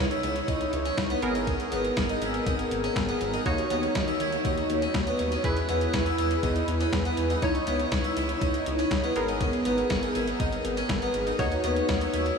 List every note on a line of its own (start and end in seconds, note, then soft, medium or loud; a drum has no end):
0.00 0.16 C#2 loud
0.00 1.19 D#4 medium
0.00 1.19 E4 medium
0.00 1.19 C#5 medium
0.11 0.22 E4 medium
0.11 closed hi-hat medium
0.23 0.41 C#2 medium
0.23 0.45 E4 medium
0.23 closed hi-hat medium
0.36 closed hi-hat soft
0.48 0.66 C#2 medium
0.48 0.70 D#4 medium
0.48 kick loud
0.48 closed hi-hat medium
0.61 closed hi-hat soft
0.73 0.90 C#2 loud
0.73 closed hi-hat medium
0.85 1.07 C#4 medium
0.85 closed hi-hat medium
0.98 1.15 C#2 loud
0.98 kick loud
0.98 snare loud
0.98 closed hi-hat medium
1.10 1.32 B3 medium
1.10 closed hi-hat medium
1.22 1.57 G#1 loud
1.22 3.42 B3 medium
1.22 3.42 G#4 medium
1.22 3.42 A#4 medium
1.22 closed hi-hat medium
1.35 1.46 D#4 medium
1.35 closed hi-hat medium
1.47 1.69 C#4 medium
1.47 kick loud
1.47 closed hi-hat medium
1.60 closed hi-hat medium
1.72 1.90 G#1 loud
1.72 1.94 B3 medium
1.72 closed hi-hat medium
1.85 closed hi-hat soft
1.97 2.14 G#1 loud
1.97 2.08 C#4 medium
1.97 kick loud
1.97 snare loud
1.97 closed hi-hat medium
2.09 2.20 D#4 medium
2.09 closed hi-hat medium
2.22 2.39 G#1 loud
2.22 2.44 E4 medium
2.22 closed hi-hat medium
2.34 closed hi-hat soft
2.47 2.64 G#1 loud
2.47 2.68 D#4 medium
2.47 kick loud
2.47 closed hi-hat medium
2.59 closed hi-hat soft
2.71 2.89 G#1 medium
2.71 closed hi-hat medium
2.84 3.06 C#4 medium
2.84 closed hi-hat medium
2.96 3.13 G#1 loud
2.96 kick loud
2.96 snare loud
2.96 closed hi-hat medium
3.09 3.30 B3 medium
3.09 closed hi-hat medium
3.21 3.38 G#1 loud
3.21 closed hi-hat medium
3.33 3.44 D#4 medium
3.33 closed hi-hat soft
3.46 3.63 D#2 loud
3.46 3.68 C#4 medium
3.46 5.40 D#4 medium
3.46 5.40 F#4 medium
3.46 5.40 C#5 medium
3.46 kick loud
3.46 closed hi-hat medium
3.58 closed hi-hat medium
3.70 3.88 D#2 loud
3.70 3.92 B3 medium
3.70 closed hi-hat medium
3.83 closed hi-hat soft
3.95 4.13 D#2 loud
3.95 4.06 C#4 medium
3.95 kick loud
3.95 snare loud
3.95 closed hi-hat medium
4.08 4.19 E4 medium
4.08 closed hi-hat soft
4.20 4.38 D#2 medium
4.20 4.42 E4 medium
4.20 closed hi-hat medium
4.32 closed hi-hat soft
4.45 4.62 D#2 loud
4.45 4.67 D#4 medium
4.45 kick loud
4.45 closed hi-hat medium
4.58 closed hi-hat soft
4.70 4.87 D#2 medium
4.70 closed hi-hat medium
4.82 5.04 C#4 medium
4.82 closed hi-hat medium
4.94 5.12 D#2 medium
4.94 kick loud
4.94 snare loud
4.94 closed hi-hat medium
5.07 5.29 B3 medium
5.07 closed hi-hat medium
5.19 5.37 D#2 medium
5.19 closed hi-hat medium
5.32 5.43 C#4 medium
5.32 closed hi-hat medium
5.44 5.61 E2 loud
5.44 5.66 C#4 medium
5.44 7.39 E4 medium
5.44 7.39 G#4 medium
5.44 7.39 B4 medium
5.44 kick loud
5.44 closed hi-hat medium
5.57 closed hi-hat medium
5.69 5.86 E2 loud
5.69 5.91 B3 medium
5.69 closed hi-hat medium
5.81 closed hi-hat soft
5.93 6.11 E2 loud
5.93 6.05 C#4 medium
5.93 kick loud
5.93 snare loud
5.93 closed hi-hat medium
6.06 6.17 E4 medium
6.06 closed hi-hat medium
6.18 6.36 E2 loud
6.18 6.40 E4 medium
6.18 closed hi-hat medium
6.31 closed hi-hat soft
6.43 6.61 E2 loud
6.43 6.65 D#4 medium
6.43 kick loud
6.43 closed hi-hat medium
6.56 closed hi-hat soft
6.68 6.85 E2 medium
6.68 closed hi-hat medium
6.80 7.02 C#4 medium
6.80 closed hi-hat medium
6.93 7.10 E2 medium
6.93 kick loud
6.93 snare loud
6.93 closed hi-hat medium
7.05 7.27 B3 medium
7.05 closed hi-hat medium
7.17 7.35 E2 loud
7.17 closed hi-hat medium
7.30 7.41 D#4 medium
7.30 closed hi-hat medium
7.42 7.60 C#2 loud
7.42 7.64 C#4 medium
7.42 9.13 D#4 medium
7.42 9.13 E4 medium
7.42 9.13 C#5 medium
7.42 kick loud
7.42 closed hi-hat medium
7.55 closed hi-hat soft
7.67 7.85 C#2 loud
7.67 7.89 B3 medium
7.67 closed hi-hat medium
7.80 closed hi-hat soft
7.92 8.09 C#2 loud
7.92 8.03 C#4 medium
7.92 kick loud
7.92 snare loud
7.92 closed hi-hat medium
8.04 8.15 E4 medium
8.04 closed hi-hat medium
8.17 8.34 C#2 loud
8.17 8.38 E4 medium
8.17 closed hi-hat medium
8.29 closed hi-hat soft
8.41 8.59 C#2 medium
8.41 8.63 D#4 medium
8.41 kick loud
8.41 closed hi-hat medium
8.54 closed hi-hat soft
8.66 8.84 C#2 loud
8.66 closed hi-hat medium
8.79 9.01 C#4 medium
8.79 closed hi-hat medium
8.91 9.08 C#2 loud
8.91 kick loud
8.91 snare loud
8.91 closed hi-hat medium
9.03 9.25 B3 medium
9.03 closed hi-hat medium
9.16 9.51 G#1 loud
9.16 11.35 B3 medium
9.16 11.35 G#4 medium
9.16 11.35 A#4 medium
9.16 closed hi-hat medium
9.28 9.39 D#4 medium
9.28 closed hi-hat medium
9.41 9.63 C#4 medium
9.41 kick loud
9.41 closed hi-hat medium
9.53 closed hi-hat soft
9.65 9.83 G#1 loud
9.65 9.87 B3 medium
9.65 closed hi-hat medium
9.78 closed hi-hat soft
9.90 10.08 G#1 loud
9.90 10.01 C#4 medium
9.90 kick loud
9.90 snare loud
9.90 closed hi-hat medium
10.03 10.14 D#4 medium
10.03 closed hi-hat soft
10.15 10.33 G#1 loud
10.15 10.37 E4 medium
10.15 closed hi-hat medium
10.28 closed hi-hat soft
10.40 10.57 G#1 loud
10.40 10.62 D#4 medium
10.40 kick loud
10.40 closed hi-hat medium
10.53 closed hi-hat soft
10.65 10.82 G#1 medium
10.65 closed hi-hat medium
10.77 10.99 C#4 medium
10.77 closed hi-hat medium
10.89 11.07 G#1 loud
10.89 kick loud
10.89 snare loud
10.89 closed hi-hat medium
11.02 11.24 B3 medium
11.02 closed hi-hat medium
11.14 11.32 G#1 loud
11.14 closed hi-hat medium
11.27 11.38 D#4 medium
11.27 closed hi-hat soft
11.39 11.56 D#2 loud
11.39 11.61 C#4 medium
11.39 12.38 D#4 medium
11.39 12.38 F#4 medium
11.39 12.38 C#5 medium
11.39 kick loud
11.39 closed hi-hat medium
11.52 closed hi-hat medium
11.64 11.81 D#2 loud
11.64 11.86 B3 medium
11.64 closed hi-hat medium
11.76 closed hi-hat soft
11.89 12.06 D#2 loud
11.89 12.00 C#4 medium
11.89 kick loud
11.89 snare loud
11.89 closed hi-hat medium
12.01 12.12 E4 medium
12.01 closed hi-hat medium
12.13 12.31 D#2 medium
12.13 12.35 E4 medium
12.13 closed hi-hat medium
12.26 closed hi-hat soft